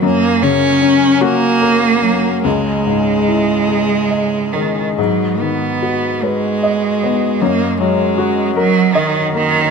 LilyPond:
<<
  \new Staff \with { instrumentName = "Harmonium" } { \time 6/8 \key gis \minor \tempo 4. = 49 << { ais'2. | dis''2.~ | dis''2. | dis''2. | } \\ { cis'2. | cis'2. | fis'2.~ | fis'2. | } >> }
  \new Staff \with { instrumentName = "Harmonium" } { \time 6/8 \key gis \minor fis2. | gis2. | b2. | ais'2. | }
  \new Staff \with { instrumentName = "Felt piano" } { \time 6/8 \key gis \minor fis,8 cis8 cis'8 fis'8 ais'8 fis8 | cis,8 gis,8 e'8 gis'8 dis''8 gis8 | gis,8 dis8 fis'8 b'8 dis''8 b8 | fis,8 fis8 fis'8 ais'8 dis''8 ais8 | }
  \new Staff \with { instrumentName = "Cello" } { \clef bass \time 6/8 \key gis \minor ais8 cis'4 ais4. | gis2~ gis8 dis8 | fis8 b4 gis4. | ais8 gis4 fis8 dis8 dis8 | }
>>